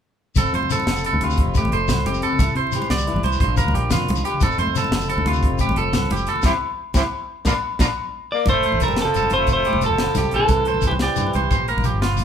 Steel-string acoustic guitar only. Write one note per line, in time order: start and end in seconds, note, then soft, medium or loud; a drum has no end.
0.37 1.38 F2 medium
0.37 1.05 C4 medium
0.55 1.56 A3 medium
0.72 1.72 F3 medium
0.72 1.22 A4 medium
1.06 1.73 C3 medium
1.06 1.39 C4 medium
1.24 1.73 G4 medium
1.40 2.41 F2 medium
1.40 2.06 C4 medium
1.58 2.39 A3 medium
1.73 2.38 F3 medium
1.73 2.23 A4 soft
2.06 2.38 C3 medium
2.06 2.40 C4 medium
2.25 2.39 A4 medium
2.41 2.74 C3 medium
2.41 3.07 E4 medium
2.75 3.40 E3 medium
2.75 3.25 G4 medium
3.07 3.39 G2 medium
3.07 3.39 E4 medium
3.26 3.40 G4 medium
3.42 4.09 A#2 medium
3.42 3.73 F3 medium
3.42 3.57 A#3 medium
3.42 4.08 D4 medium
3.42 3.74 F4 medium
3.58 4.40 A#3 soft
3.75 4.40 F3 medium
3.75 4.25 F4 medium
4.09 4.41 F2 medium
4.09 4.41 D4 medium
4.25 4.40 G4 medium
4.42 5.42 F2 medium
4.42 5.09 C4 medium
4.60 5.60 A3 medium
4.76 5.77 F3 medium
4.76 5.27 A4 medium
5.10 5.77 C3 medium
5.10 5.43 C4 medium
5.29 5.78 G4 medium
5.44 5.94 F2 medium
5.44 6.43 C4 medium
5.61 6.43 A3 medium
5.78 6.43 F3 medium
5.78 6.43 A4 medium
5.94 6.09 G2 medium
6.10 6.27 A2 medium
6.27 muted steel-string acoustic guitar stroke medium
6.44 6.50 E3 medium
6.44 6.50 G3 medium
6.44 6.50 C4 medium
6.94 7.00 E3 medium
6.94 7.00 G3 medium
6.94 7.00 C4 medium
7.45 7.51 F3 medium
7.45 7.51 A#3 loud
7.45 7.51 D4 medium
7.79 7.85 F3 medium
7.79 7.85 A#3 medium
7.79 7.85 D4 medium
8.46 muted steel-string acoustic guitar stroke medium
8.65 9.66 A3 medium
8.81 9.82 F3 soft
8.98 9.15 C4 medium
9.14 9.82 C3 medium
9.31 9.99 C4 medium
9.47 10.50 F2 medium
9.67 10.49 A3 soft
9.83 10.49 F3 medium
10.00 10.16 C4 medium
10.17 10.49 C3 medium
10.17 10.31 C4 medium
10.33 10.67 C4 medium
10.51 10.84 C3 medium
10.69 11.50 C4 medium
10.87 11.51 E3 medium
11.03 muted steel-string acoustic guitar stroke medium
11.20 11.51 G2 medium
11.20 11.36 E4 soft
11.37 11.51 E4 medium
11.53 12.03 A#2 medium
11.70 12.24 A#3 medium
11.87 12.24 F3 medium
12.04 12.20 A#2 medium
12.20 12.24 A2 medium